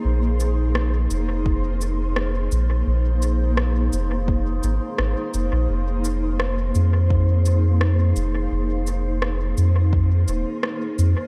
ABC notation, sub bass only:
X:1
M:4/4
L:1/16
Q:1/4=85
K:Fm
V:1 name="Sub bass" clef=bass
B,,,6 F,,,8 B,,,2 | B,,,6 F,,,4 A,,, z A,,, z F,,, B,,, | F,,,6 F,,8 F,,,2 | F,,,6 F,,4 E,,, z3 F,, z |]